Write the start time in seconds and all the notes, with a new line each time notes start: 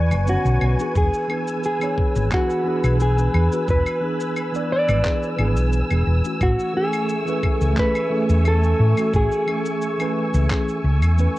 Already playing: E2 B4 D5 G#5 C#6
0.11 F#1, claves, shaker
0.25 D3 B3 C#4 F#4 C#5, shaker
0.45 B1, shaker
0.61 B1, claves
0.78 E3 B3 D4 G#4, shaker
0.95 E1 G#4 B4 E6, kick, shaker
1.14 shaker
1.28 E3 B3 D4 G#4, claves
1.48 shaker
1.64 G#4, shaker
1.79 E3 B3 D4 C#5, claves, shaker
1.98 kick
2.16 G#1, shaker
2.30 E3 B3 D4 G#4, kick, clap, claves, shaker
2.34 F#4
2.50 shaker
2.64 E3 B3 D4 G#4
2.84 B1, claves, shaker
3.00 G#4, shaker
3.16 E3 B3 D4 G#4, shaker
3.34 E2, claves
3.50 E3 B3 D4 F#4, shaker
3.68 E1 B4, kick, shaker
3.86 claves, shaker
4.00 E3 B3 D4 G#4
4.20 shaker
4.36 claves, shaker
4.52 E3 B3 D4 D5, shaker
4.72 D5
4.89 G#1, claves, shaker
5.02 E3 B3 D4 G#4, kick, clap, shaker
5.23 shaker
5.36 G#1 E3 B3 D4 G#4, claves
5.57 B1, shaker
5.73 shaker
5.89 E1 E3 B3 D4 G#4, claves, shaker
6.07 E1
6.23 E3 A3 C#4 F#4, shaker
6.41 A1 A3 F#4 G#5 C#6, kick, claves, shaker
6.59 shaker
6.73 E3 A3 C#4 G#4
6.93 claves, shaker
7.09 shaker
7.25 E3 A3 C#4 B4, shaker
7.43 kick, claves
7.61 C#2, shaker
7.76 E3 A3 C#4 G#4 B4, kick, clap, shaker
7.95 claves, shaker
8.10 E3 A3 C#4 G#4
8.29 E2, shaker
8.45 A4, claves, shaker
8.62 E3 A3 C#4 G#5, shaker
8.80 A2
8.96 E3 A3 C#4 F#4, claves, shaker
9.14 A1 G#4, kick, shaker
9.32 shaker
9.46 E3 A3 C#4 G#4, claves
9.66 shaker
9.82 shaker
9.98 E3 A3 C#4 B4, claves, shaker
10.34 C#2, shaker
10.48 E3 A3 C#4 G#4, kick, clap, claves, shaker
10.68 shaker
10.84 C#2
11.02 E2, claves, shaker
11.17 E3 A3 C#4 B4, shaker